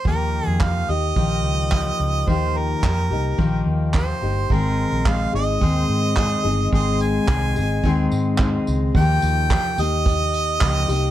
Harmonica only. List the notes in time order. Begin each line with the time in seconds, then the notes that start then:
0.07 A#4
0.47 G#4
0.63 F5
0.91 D#5
2.29 C5
2.57 A#4
3.97 C5
4.52 A#4
5.08 F5
5.35 D#5
6.74 D#5
7.02 G#5
8.97 G5
9.81 D#5